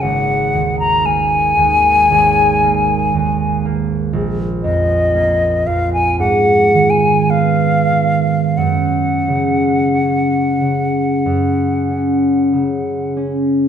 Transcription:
<<
  \new Staff \with { instrumentName = "Flute" } { \time 4/4 \key aes \dorian \tempo 4 = 57 ges''8. bes''16 aes''2~ aes''8 r8 | r8 ees''4 f''16 aes''16 \tuplet 3/2 { ges''4 aes''8 } f''4 | ges''2.~ ges''8 r8 | }
  \new Staff \with { instrumentName = "Harp" } { \clef bass \time 4/4 \key aes \dorian <aes,, bes>8 ees,8 bes8 ees,8 aes,,8 bes8 ees,8 bes8 | bes,,8 f,8 bes8 f,8 aes,8 ees8 ces'8 ees8 | ges,8 des8 des'8 des8 ges,8 des'8 des8 des'8 | }
>>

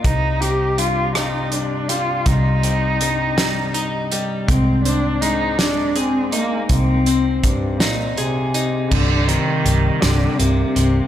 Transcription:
<<
  \new Staff \with { instrumentName = "Cello" } { \time 6/8 \key c \minor \tempo 4. = 54 ees'8 g'8 f'8 ees'8 d'8 f'8 | ees'2~ ees'8 r8 | c'8 d'8 ees'8 d'8 c'8 bes8 | c'4 g,8 bes,8 c4 |
d8 ees4 d8 c4 | }
  \new Staff \with { instrumentName = "Clean electric guitar" } { \clef bass \time 6/8 \key c \minor c,8 c8 g,8 g4 g8 | c,8 c8 g,8 g8 ees'8 g8 | aes,8 c'8 aes4 aes'8 ees'8~ | ees'8 c'4 ees'8 aes'8 ees'8 |
c,8 c8 g8 c8 bes8 c8 | }
  \new Staff \with { instrumentName = "Picked electric bass" } { \clef bass \time 6/8 \key c \minor c,2. | c,2. | c,2. | c,2. |
c,,4 c,,8 c,,8 c,,8 c,,8 | }
  \new DrumStaff \with { instrumentName = "Drums" } \drummode { \time 6/8 <hh bd>8 hh8 hh8 <hh ss>8 hh8 hh8 | <hh bd>8 hh8 hh8 <hh sn>8 hh8 hh8 | <hh bd>8 hh8 hh8 <hh sn>8 hh8 hh8 | <hh bd>8 hh8 <hh bd>8 <hh sn>8 hh8 hh8 |
<cymc bd>8 hh8 hh8 <hh sn>8 hh8 hh8 | }
>>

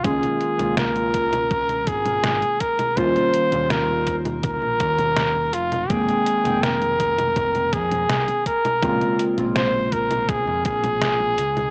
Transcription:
<<
  \new Staff \with { instrumentName = "Flugelhorn" } { \time 4/4 \key bes \dorian \tempo 4 = 82 aes'4 bes'4. aes'4 bes'8 | c''4 bes'8 r8 bes'4. f'8 | aes'4 bes'4. aes'4 bes'8~ | bes'8 r8 c''8 bes'8 aes'8 aes'4. | }
  \new Staff \with { instrumentName = "Synth keys" } { \time 4/4 \key bes \dorian <ees aes bes des' f'>8 r16 <ees aes bes des' f'>2.~ <ees aes bes des' f'>16 | <ees g bes des' f'>8. <ees g bes des' f'>2~ <ees g bes des' f'>8. r8 | <ees aes bes c' g''>8 r16 <ees aes bes c' g''>2~ <ees aes bes c' g''>8. r8 | <des aes bes c' f'>8. <des aes bes c' f'>2~ <des aes bes c' f'>8. r8 | }
  \new Staff \with { instrumentName = "Fingered electric bass" } { \clef bass \time 4/4 \key bes \dorian des,16 r8 des,4.~ des,16 aes,,8 aes,,16 r8. | ees,16 r8 ees,4. bes,,16 ees,4 f,,8 | f,,16 r8 f,,4.~ f,,16 f,8 c,16 r8. | bes,,16 r8 bes,,4. f,16 bes,,4 des,8 | }
  \new DrumStaff \with { instrumentName = "Drums" } \drummode { \time 4/4 <cgho hh bd>16 <cgho hh>16 hh16 <cgho hh>16 <cgho hh sn>16 <cgho hh>16 <hh bd>16 <cgho hh>16 <cgho hh bd>16 <cgho hh>16 <hh bd>16 <cgho hh>16 <cgho hh sn>16 <cgho hh>16 <hh bd>16 <cgho hh>16 | <cgho hh bd>16 <cgho hh>16 hh16 <cgho hh>16 <cgho hh sn>16 cgho16 <hh bd>16 <cgho hh>16 <cgho hh bd>16 cgho16 <hh bd>16 <cgho hh>16 <cgho hh sn>16 cgho16 hh16 <cgho hh>16 | <cgho hh bd>16 <cgho hh>16 hh16 <cgho hh>16 <cgho hh sn>16 <cgho hh>16 <hh bd>16 <cgho hh>16 <cgho hh bd>16 <cgho hh>16 <hh bd>16 <cgho hh>16 <cgho hh sn>16 <cgho hh>16 <hh bd>16 <cgho hh>16 | <cgho hh bd>16 <cgho hh>16 hh16 <cgho hh>16 <cgho hh sn>16 cgho16 <hh bd>16 <cgho hh>16 <cgho hh bd>16 cgho16 <hh bd>16 <cgho hh>16 <cgho hh sn>16 cgho16 hh16 <cgho hh>16 | }
>>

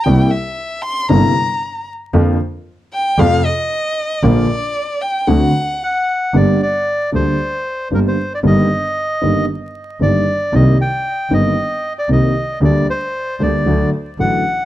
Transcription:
<<
  \new Staff \with { instrumentName = "Violin" } { \time 4/4 \key bes \major \tempo 4 = 115 g''8 e''4 c'''8 bes''4. r8 | r4. g''8 f''8 ees''4. | d''4. g''8 fis''4. r8 | \key g \minor r1 |
r1 | r1 | r1 | }
  \new Staff \with { instrumentName = "Bandoneon" } { \time 4/4 \key bes \major r1 | r1 | r2. fis''4 | \key g \minor d''8 d''4 c''4. bes'16 c''8 d''16 |
ees''2 r4 d''4 | ees''8 g''4 ees''4~ ees''16 d''16 ees''4 | d''8 c''4 d''4 r8 fis''4 | }
  \new Staff \with { instrumentName = "Grand piano" } { \clef bass \time 4/4 \key bes \major <c, c g bes e'>8 r4. <g,, g, c g bes e'>8 r4. | <f, d f bes f'>8 r4. <f, c f a f'>8 r4. | <bes,, bes, d f bes f'>8 r4. <d, d a c' fis'>8 r4. | \key g \minor <g,, g, d g bes g'>8 r4 <d, d g bes g'>8 r4 <g,, g, d g bes g'>8 r8 |
<g,, g, ees g bes g'>8 r4 <g,, g, ees g bes g'>8 r4 <g,, g, ees g bes g'>8 r8 | <c, c ees bes c' g'>8 r4 <g,, g, ees bes c' g'>8 r4 <c, c ees bes c' g'>8 r8 | <d, d g bes g'>8 r4 <d, d g bes g'>8 <d, d fis a fis'>8 r8 <a,, a, d fis a fis'>8 r8 | }
  \new Staff \with { instrumentName = "Double bass" } { \clef bass \time 4/4 \key bes \major c,8 r4. g,,8 r4. | f,8 r4. f,8 r4. | bes,,8 r4. d,8 r4. | \key g \minor g,,8 r4 d,8 r4 g,,8 r8 |
g,,8 r4 g,,8 r4 g,,8 r8 | c,8 r4 g,,8 r4 c,8 r8 | d,8 r4 d,8 d,8 r8 a,,8 r8 | }
>>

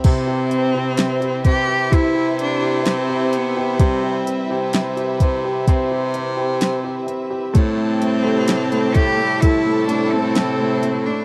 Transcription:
<<
  \new Staff \with { instrumentName = "Violin section" } { \time 4/4 \key c \major \tempo 4 = 64 <e' b' e''>1~ | <e' b' e''>1 | <e' c'' a''>1 | }
  \new Staff \with { instrumentName = "Cello" } { \time 4/4 \key c \major c'4. g'8 e'8 d'8 c'8 b8 | c'4 r2. | c'4. g'8 e'8 d'16 c'4 d'16 | }
  \new Staff \with { instrumentName = "String section" } { \time 4/4 \key c \major << { r1 | r1 | g'2 a'2 | } \\ { r1 | r1 | <c g a e'>1 | } >> }
  \new Staff \with { instrumentName = "Grand piano" } { \time 4/4 \key c \major c16 g'16 c'16 g'16 c'16 g'16 c'16 g'16 e'16 g'8 g'8 g'8 g'16 | g16 g'16 c'16 g'16 c'16 g'16 c'16 g'16 c'16 g'16 c'16 g'16 c'16 g'16 c'16 g'16 | a16 a16 a16 a16 a16 a16 a16 a16 e'16 a16 a16 a16 a16 a16 a16 a16 | }
  \new Staff \with { instrumentName = "Baritone saxophone" } { \clef bass \time 4/4 \key c \major c8. c8. c8 c2 | c8 r16 c8. c8 c4. r8 | a,8. a,8. a,8 a,2 | }
  \new DrumStaff \with { instrumentName = "Drums" } \drummode { \time 4/4 <cymc hh bd>8 hh8 <hh sn>16 hh16 <hh bd>8 <hh bd>8 hh8 <hh sn>8 hh8 | <hh bd>8 hh8 <hh sn>16 hh16 <hh bd>8 <hh bd>8 hh8 <hh sn>8 hh8 | <hh bd>8 hh8 <hh sn>16 hh16 <hh bd>8 <hh bd>8 hh8 <hh sn>8 hh8 | }
>>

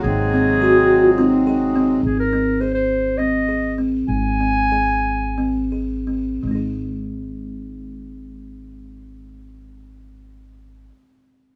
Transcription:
<<
  \new Staff \with { instrumentName = "Clarinet" } { \time 7/8 \key aes \mixolydian \tempo 4 = 90 aes'2~ aes'8 r4 | aes'16 bes'8. c''16 c''8. ees''4 r8 | aes''2~ aes''8 r4 | r2. r8 |
r2. r8 | }
  \new Staff \with { instrumentName = "Vibraphone" } { \time 7/8 \key aes \mixolydian r4 ges'8 ges'16 f'16 ees'4. | r2. r8 | r2. r8 | r2. r8 |
r2. r8 | }
  \new Staff \with { instrumentName = "Kalimba" } { \time 7/8 \key aes \mixolydian r8 c'8 aes'4 c'8 aes'8 c'8 | r8 c'8 aes'4 c'8 aes'8 c'8 | r8 c'8 aes'4 c'8 aes'8 c'8 | <aes c' ees' aes'>2.~ <aes c' ees' aes'>8~ |
<aes c' ees' aes'>2.~ <aes c' ees' aes'>8 | }
  \new Staff \with { instrumentName = "Harmonium" } { \clef bass \time 7/8 \key aes \mixolydian <c ges aes>2.~ <c ges aes>8 | r2. r8 | r2. r8 | r2. r8 |
r2. r8 | }
  \new Staff \with { instrumentName = "Upright bass" } { \clef bass \time 7/8 \key aes \mixolydian aes,,2.~ aes,,8 | aes,,2.~ aes,,8 | aes,,2.~ aes,,8 | aes,,2.~ aes,,8~ |
aes,,2.~ aes,,8 | }
>>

